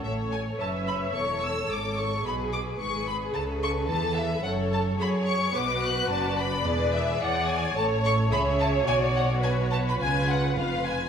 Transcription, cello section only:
X:1
M:4/4
L:1/8
Q:1/4=108
K:A
V:1 name="Cello section" clef=bass
A,,2 F,,2 E,,2 G,,2 | B,,2 G,,2 C,2 E,2 | F,,2 F,2 B,,2 F,,2 | E,,2 E,2 A,,2 C,2 |
B,,4 C,2 ^E,,2 |]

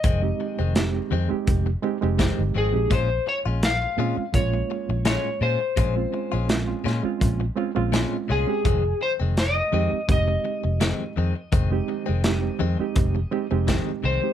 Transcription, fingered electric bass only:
X:1
M:4/4
L:1/16
Q:"Swing 16ths" 1/4=84
K:Fm
V:1 name="Fingered electric bass" clef=bass
F,,,2 z F,,,3 F,, z F,,,2 z F,,,2 G,,, A,,, B,,, | B,,,2 z B,,,3 B,, z B,,,2 z B,,,2 z B,, z | B,,,2 z B,,,3 B,, z B,,,2 z B,,,2 z C,, z | F,,,2 z F,,,3 F,, z F,,,2 z F,,,2 z F,, z |
F,,,2 z F,,,3 F,, z F,,,2 z F,,,2 z C,, z |]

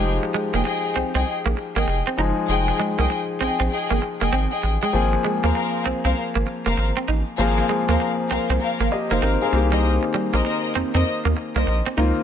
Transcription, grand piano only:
X:1
M:4/4
L:1/16
Q:"Swing 16ths" 1/4=98
K:Fm
V:1 name="Grand piano"
z16 | z16 | z16 | z8 z2 [Ge] [Ec] B [CA]2 z |
z16 |]
V:2 name="Grand piano"
[F,A,EG]12- [F,A,EG]2 [F,A,EA]2- | [F,A,EA]12- [F,A,EA]2 z2 | [F,B,CA]16 | [F,B,CA]12- [F,B,CA]2 [E,B,CG]2- |
[E,B,CG]12- [E,B,CG]2 [E,B,CF]2 |]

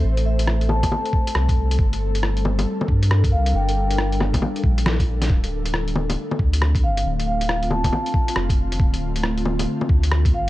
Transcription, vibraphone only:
X:1
M:4/4
L:1/8
Q:"Swing 16ths" 1/4=137
K:Dm
V:1 name="Vibraphone"
z e2 a3 z2 | z6 z f | g3 z4 z | z6 z f |
z f2 a3 z2 | z6 z f |]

